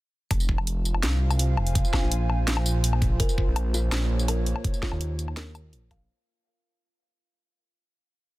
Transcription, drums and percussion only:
0.31 kick loud
0.31 closed hi-hat medium
0.31 low woodblock medium
0.40 tambourine soft
0.49 kick medium
0.58 low woodblock medium
0.67 closed hi-hat medium
0.85 tambourine soft
0.94 low woodblock medium
1.03 snare loud
1.03 closed hi-hat medium
1.30 tambourine soft
1.30 low woodblock medium
1.39 closed hi-hat medium
1.57 low woodblock medium
1.67 closed hi-hat soft
1.75 kick loud
1.75 closed hi-hat medium
1.85 tambourine soft
1.93 kick medium
1.93 snare medium
1.93 low woodblock medium
2.12 closed hi-hat medium
2.30 low woodblock medium
2.48 snare loud
2.48 closed hi-hat medium
2.57 low woodblock medium
2.66 tambourine medium
2.84 closed hi-hat medium
2.93 low woodblock medium
3.02 kick medium
3.02 closed hi-hat soft
3.20 kick loud
3.20 closed hi-hat medium
3.29 tambourine soft
3.38 kick medium
3.56 closed hi-hat medium
3.56 low woodblock medium
3.74 tambourine soft
3.92 snare loud
3.92 closed hi-hat medium
3.92 low woodblock medium
4.19 tambourine soft
4.28 closed hi-hat medium
4.28 low woodblock medium
4.46 closed hi-hat soft
4.56 low woodblock medium
4.64 kick loud
4.64 closed hi-hat medium
4.74 tambourine soft
4.83 kick medium
4.83 snare medium
4.92 low woodblock soft
5.01 closed hi-hat medium
5.19 closed hi-hat soft
5.19 tambourine soft
5.28 low woodblock medium
5.37 snare loud
5.37 closed hi-hat medium
5.55 tambourine medium
5.55 low woodblock medium
5.73 closed hi-hat medium
5.91 kick medium
5.91 closed hi-hat soft
5.91 low woodblock medium

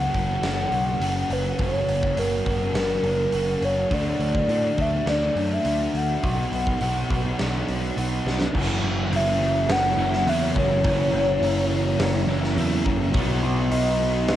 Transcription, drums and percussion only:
0.14 kick medium
0.14 open hi-hat medium
0.43 snare loud
0.43 open hi-hat medium
0.72 open hi-hat medium
1.01 open hi-hat medium
1.30 open hi-hat medium
1.59 kick loud
1.59 open hi-hat medium
1.88 open hi-hat medium
2.03 kick medium
2.17 open hi-hat medium
2.46 kick medium
2.46 open hi-hat medium
2.75 snare loud
2.75 open hi-hat medium
3.04 open hi-hat medium
3.33 open hi-hat medium
3.62 open hi-hat soft
3.91 kick loud
3.91 open hi-hat medium
4.21 open hi-hat soft
4.35 kick medium
4.49 open hi-hat medium
4.78 kick medium
4.78 open hi-hat soft
5.07 snare loud
5.07 open hi-hat medium
5.37 open hi-hat medium
5.65 open hi-hat medium
5.95 open hi-hat soft
6.24 kick loud
6.24 open hi-hat medium
6.53 open hi-hat medium
6.67 kick medium
6.81 open hi-hat medium
7.11 kick medium
7.11 open hi-hat medium
7.39 snare medium
7.39 open hi-hat medium
7.68 open hi-hat medium
7.98 open hi-hat medium
8.27 snare medium
8.41 snare medium
8.55 kick loud
8.55 crash loud
9.13 open hi-hat medium
9.69 snare loud
9.69 open hi-hat medium
10.13 snare soft
10.27 open hi-hat medium
10.56 kick medium
10.84 kick loud
10.84 open hi-hat medium
11.43 open hi-hat medium
12.00 snare loud
12.00 open hi-hat medium
12.44 snare soft
12.58 open hi-hat medium
12.86 kick medium
13.14 kick loud
13.14 open hi-hat medium
13.72 open hi-hat medium
14.28 snare loud
14.28 open hi-hat medium

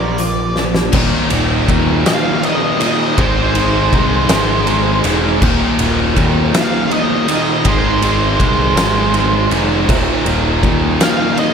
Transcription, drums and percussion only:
0.18 closed hi-hat medium
0.56 snare medium
0.74 snare medium
0.93 kick loud
0.93 crash loud
1.30 ride medium
1.68 kick medium
1.68 ride medium
2.06 snare loud
2.06 ride medium
2.43 ride medium
2.81 ride medium
3.18 kick loud
3.18 ride medium
3.55 ride medium
3.93 kick medium
3.93 ride medium
4.29 snare loud
4.29 ride medium
4.67 ride medium
5.04 ride medium
5.42 kick loud
5.42 crash loud
5.79 ride medium
6.16 kick medium
6.16 ride medium
6.54 snare loud
6.54 ride loud
6.91 ride medium
7.28 ride medium
7.65 kick loud
7.65 ride loud
8.02 ride medium
8.40 kick medium
8.40 ride medium
8.77 snare loud
8.77 ride loud
9.14 ride medium
9.51 ride medium
9.89 kick loud
9.89 crash medium
10.26 ride medium
10.63 kick medium
10.63 ride medium
11.01 snare loud
11.01 ride medium
11.37 ride medium

